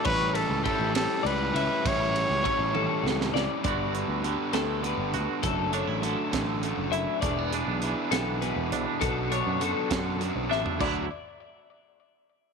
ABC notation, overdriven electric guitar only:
X:1
M:6/8
L:1/8
Q:3/8=67
K:D
V:1 name="Overdriven electric guitar"
[A,,E,G,CE]2 [E,G,CE] [A,,E,G,CE]2 [G,CE] | [A,,E,G,CE]2 [E,G,CE] [A,,E,G,CE]2 [G,CE] | [G,B,DGB] [DGB] [B,DGB] [G,B,DGB] [B,DGB]2 | [F,A,DA] [A,DA] [F,A,DA] [F,A,DA] [F,A,DA]2 |
[E,B,D^G] [B,DG] [E,B,DG] [E,B,DG] [E,B,DG]2 | [B,,F,B,DF] [B,DF] [F,B,DF] [B,,F,B,DF] [F,B,DF]2 | [D,F,A,DF] z4 z |]